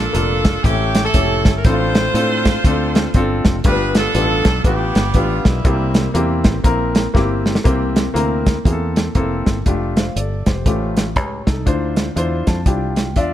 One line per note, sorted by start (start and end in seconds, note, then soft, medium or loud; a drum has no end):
0.00 0.41 A#2 medium
0.00 0.61 D4 medium
0.00 0.61 F4 medium
0.00 0.65 A4 medium
0.13 0.57 F1 medium
0.13 0.54 A#3 medium
0.13 0.54 D4 medium
0.13 0.54 F4 medium
0.13 0.54 A4 medium
0.13 closed hi-hat loud
0.45 kick medium
0.45 snare loud
0.45 closed hi-hat medium
0.64 1.07 A1 loud
0.64 1.41 A2 medium
0.64 0.71 C4 soft
0.64 1.04 C#4 medium
0.64 1.04 E4 medium
0.64 1.05 G4 medium
0.64 1.05 A4 medium
0.64 kick loud
0.64 closed hi-hat medium
0.70 1.07 C#4 medium
0.95 snare loud
0.95 closed hi-hat medium
1.05 1.61 C#4 medium
1.05 1.61 E4 medium
1.05 1.51 A4 loud
1.14 1.46 F1 medium
1.14 1.54 C#4 medium
1.14 1.54 E4 medium
1.14 1.55 G4 medium
1.14 1.55 A4 medium
1.14 kick medium
1.14 closed hi-hat medium
1.45 1.62 G1 medium
1.45 kick medium
1.45 snare loud
1.45 closed hi-hat medium
1.56 1.65 A#4 medium
1.64 2.07 A1 medium
1.64 2.42 A2 medium
1.64 2.05 C4 medium
1.64 2.05 D4 medium
1.64 1.73 E4 medium
1.64 3.42 F4 medium
1.64 2.06 A4 medium
1.64 3.42 C5 loud
1.64 kick loud
1.64 closed hi-hat medium
1.72 2.08 F4 medium
1.95 snare loud
1.95 closed hi-hat medium
2.14 2.57 A2 loud
2.14 2.54 C4 medium
2.14 2.55 D4 medium
2.14 2.55 F4 medium
2.14 2.55 A4 medium
2.14 closed hi-hat loud
2.45 kick medium
2.45 snare loud
2.45 closed hi-hat medium
2.64 3.07 D2 medium
2.64 3.05 C4 medium
2.64 3.05 D4 medium
2.64 3.05 F4 medium
2.64 3.06 A4 medium
2.64 kick loud
2.64 closed hi-hat medium
2.95 snare loud
2.95 closed hi-hat medium
3.14 3.40 G1 medium
3.14 3.55 C4 medium
3.14 3.55 D4 medium
3.14 3.55 F4 medium
3.14 3.55 A4 loud
3.14 kick medium
3.14 closed hi-hat medium
3.45 3.62 F1 medium
3.45 kick medium
3.45 snare loud
3.45 closed hi-hat medium
3.64 4.07 G1 loud
3.64 4.42 G2 medium
3.64 3.72 A3 medium
3.64 3.96 D4 medium
3.64 4.05 D4 medium
3.64 3.96 F4 medium
3.64 4.05 F4 medium
3.64 4.05 G4 medium
3.64 3.94 B4 loud
3.64 kick loud
3.64 closed hi-hat loud
3.70 4.07 B3 medium
3.95 4.63 D4 medium
3.95 4.92 F4 medium
3.95 4.66 A4 loud
3.95 snare loud
3.95 closed hi-hat medium
4.14 4.41 A1 medium
4.14 4.54 B3 medium
4.14 4.54 D4 medium
4.14 4.55 F4 medium
4.14 4.23 G4 medium
4.14 closed hi-hat loud
4.22 4.58 A4 medium
4.45 4.62 B1 loud
4.45 kick medium
4.45 snare loud
4.45 closed hi-hat medium
4.64 4.91 A1 medium
4.64 5.04 B3 medium
4.64 5.61 B3 medium
4.64 5.61 D4 medium
4.64 5.05 D4 medium
4.64 5.05 F4 medium
4.64 5.05 G4 medium
4.64 5.12 G4 medium
4.64 kick loud
4.64 closed hi-hat medium
4.95 5.12 G1 loud
4.95 snare loud
4.95 closed hi-hat medium
5.14 5.41 A1 medium
5.14 5.55 B3 medium
5.14 5.55 D4 medium
5.14 5.46 F4 medium
5.14 5.55 F4 medium
5.14 5.55 G4 medium
5.14 kick medium
5.14 closed hi-hat medium
5.45 5.62 B1 medium
5.45 6.41 G3 medium
5.45 6.41 A#3 medium
5.45 6.15 E4 medium
5.45 kick medium
5.45 snare loud
5.45 closed hi-hat medium
5.65 6.07 C2 loud
5.65 6.42 C3 medium
5.65 6.05 A#3 medium
5.65 6.05 C4 medium
5.65 6.05 E4 medium
5.65 6.05 G4 medium
5.65 kick loud
5.65 closed hi-hat medium
5.94 snare loud
5.94 closed hi-hat medium
6.14 6.47 E2 medium
6.14 6.54 A#3 medium
6.14 6.55 C4 medium
6.14 6.55 E4 medium
6.14 6.55 G4 medium
6.14 closed hi-hat loud
6.44 6.62 A1 medium
6.44 kick medium
6.44 snare loud
6.44 closed hi-hat medium
6.64 7.07 A#1 medium
6.64 7.04 A#3 medium
6.64 7.04 C4 medium
6.64 7.05 E4 medium
6.64 7.05 A#4 loud
6.64 kick loud
6.64 closed hi-hat loud
6.95 snare loud
6.95 closed hi-hat medium
7.14 7.57 G1 medium
7.14 7.54 A#3 medium
7.14 7.54 C4 medium
7.14 7.55 E4 medium
7.14 7.55 G4 medium
7.14 kick medium
7.14 snare medium
7.46 snare medium
7.55 snare medium
7.64 8.08 C2 medium
7.64 8.42 C3 medium
7.64 8.04 A#3 medium
7.64 8.05 C4 medium
7.64 8.05 E4 medium
7.64 8.05 G4 medium
7.64 kick loud
7.64 closed hi-hat medium
7.96 snare loud
7.96 closed hi-hat medium
8.14 8.58 D2 medium
8.14 8.54 A#3 medium
8.14 8.55 C4 medium
8.14 8.55 E4 medium
8.14 8.55 A#4 medium
8.14 closed hi-hat medium
8.46 kick medium
8.46 snare loud
8.46 closed hi-hat medium
8.65 9.08 E2 medium
8.65 9.05 A#3 medium
8.65 9.05 C4 medium
8.65 9.06 E4 medium
8.65 8.73 G#4 medium
8.65 kick loud
8.65 closed hi-hat medium
8.72 9.09 A4 medium
8.96 snare loud
8.96 closed hi-hat medium
9.15 9.41 F1 medium
9.15 9.55 A#3 medium
9.15 9.55 C4 medium
9.15 9.56 E4 medium
9.15 9.56 A4 medium
9.15 kick medium
9.15 closed hi-hat medium
9.46 9.63 G1 medium
9.46 kick medium
9.46 snare medium
9.46 closed hi-hat medium
9.66 10.09 F1 medium
9.66 10.05 A3 medium
9.66 10.06 D4 medium
9.66 10.06 F4 medium
9.66 9.97 G4 medium
9.66 kick loud
9.66 closed hi-hat medium
9.97 10.16 C5 medium
9.97 10.15 F5 medium
9.97 snare loud
9.97 closed hi-hat medium
10.16 10.42 G1 medium
10.16 10.45 A4 medium
10.16 10.45 D5 medium
10.16 closed hi-hat loud
10.46 10.63 F1 medium
10.46 10.66 G4 soft
10.46 10.94 C5 medium
10.46 kick medium
10.46 snare loud
10.46 closed hi-hat medium
10.66 11.16 A1 loud
10.66 11.43 A2 medium
10.66 11.06 A3 medium
10.66 11.06 C#4 medium
10.66 11.06 F4 medium
10.66 11.06 G4 medium
10.66 kick loud
10.66 closed hi-hat medium
10.97 snare medium
10.97 closed hi-hat medium
11.16 11.42 C#2 medium
11.16 11.46 G4 medium
11.16 11.45 C#5 medium
11.16 kick medium
11.16 closed hi-hat medium
11.47 11.64 C2 medium
11.47 11.95 D#4 medium
11.47 11.95 A4 medium
11.47 kick medium
11.47 snare medium
11.47 closed hi-hat medium
11.66 12.09 D2 medium
11.66 12.43 D3 medium
11.66 12.06 D4 medium
11.66 12.06 E4 medium
11.66 12.06 F4 medium
11.66 12.06 C5 medium
11.66 kick loud
11.66 closed hi-hat medium
11.96 snare loud
11.96 closed hi-hat medium
12.16 12.42 E2 medium
12.16 12.56 D4 medium
12.16 12.56 E4 medium
12.16 12.56 F4 medium
12.16 12.57 C5 medium
12.16 closed hi-hat medium
12.47 12.64 F2 medium
12.47 12.65 A5 medium
12.47 kick medium
12.47 snare medium
12.47 closed hi-hat medium
12.66 13.16 C2 medium
12.66 13.06 D4 medium
12.66 13.06 E4 medium
12.66 13.07 F4 medium
12.66 13.07 G4 medium
12.66 13.13 G5 medium
12.66 kick loud
12.66 closed hi-hat medium
12.96 snare medium
12.96 closed hi-hat medium
13.16 13.34 E2 medium
13.16 13.34 D4 medium
13.16 13.34 F4 medium
13.16 13.34 D5 medium
13.16 13.34 E5 medium
13.16 13.34 F5 medium
13.16 kick medium
13.16 closed hi-hat medium